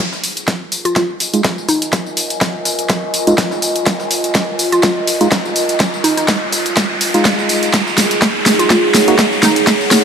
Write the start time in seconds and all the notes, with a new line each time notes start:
Already playing: D#4 G#4 C5
0.00 F4, tambourine, riser
0.13 snare, tambourine
0.23 open hi-hat, tambourine
0.36 A#4, closed hi-hat, tambourine
0.48 kick, snare, closed hi-hat, tambourine
0.52 G#5
0.72 open hi-hat, tambourine
0.81 D#5
0.85 F4, closed hi-hat, tambourine
0.96 F4, kick, snare, closed hi-hat, tambourine
1.20 open hi-hat, tambourine
1.34 G#3 D#4 F4, closed hi-hat, tambourine
1.44 kick, snare, closed hi-hat, tambourine
1.58 tambourine
1.69 D#4, open hi-hat, tambourine
1.82 closed hi-hat, tambourine
1.93 kick, snare, closed hi-hat, tambourine
2.06 tambourine
2.17 open hi-hat, tambourine
2.30 closed hi-hat, tambourine
2.41 kick, snare, closed hi-hat, tambourine
2.65 snare, open hi-hat, tambourine
2.79 closed hi-hat, tambourine
2.90 kick, snare, closed hi-hat, tambourine
3.14 open hi-hat, tambourine
3.27 G#3 D#4 F4, closed hi-hat, tambourine
3.38 kick, snare, closed hi-hat, tambourine
3.51 snare, tambourine
3.62 open hi-hat, tambourine
3.76 closed hi-hat, tambourine
3.86 kick, snare, closed hi-hat, tambourine
4.00 snare, tambourine
4.11 open hi-hat, tambourine
4.24 closed hi-hat, tambourine
4.35 kick, snare, closed hi-hat, tambourine
4.59 open hi-hat, tambourine
4.72 F4, closed hi-hat, tambourine
4.83 F4, kick, snare, closed hi-hat, tambourine
5.07 open hi-hat, tambourine
5.21 G#3 D#4 F4, closed hi-hat, tambourine
5.32 kick, snare, closed hi-hat, tambourine
5.45 tambourine
5.56 open hi-hat, tambourine
5.69 closed hi-hat, tambourine
5.80 kick, snare, closed hi-hat, tambourine
5.94 tambourine
6.04 D#4, open hi-hat, tambourine
6.17 D#4, closed hi-hat, tambourine
6.28 kick, snare, closed hi-hat, tambourine
6.52 snare, open hi-hat, tambourine
6.66 closed hi-hat, tambourine
6.77 kick, snare, closed hi-hat, tambourine
7.01 open hi-hat, tambourine
7.14 G#3 D#4 F4, closed hi-hat, tambourine
7.25 kick, snare, closed hi-hat, tambourine
7.38 snare, tambourine
7.49 open hi-hat, tambourine
7.63 closed hi-hat, tambourine
7.73 D#4, kick, snare, closed hi-hat, tambourine
7.78 G#4
7.87 snare, tambourine
7.98 snare, open hi-hat, tambourine
8.11 closed hi-hat, tambourine
8.22 kick, snare, closed hi-hat, tambourine
8.31 F#5
8.40 C#5
8.46 snare, open hi-hat, tambourine
8.59 F4, closed hi-hat, tambourine
8.70 F4, kick, snare, closed hi-hat, tambourine
8.94 snare, open hi-hat, tambourine
9.08 A#3 D#4 F#4, closed hi-hat, tambourine
9.19 kick, snare, closed hi-hat, tambourine
9.32 tambourine
9.43 D#4, snare, open hi-hat, tambourine
9.56 closed hi-hat, tambourine
9.67 kick, snare, closed hi-hat, tambourine
9.81 tambourine
9.91 snare, open hi-hat, tambourine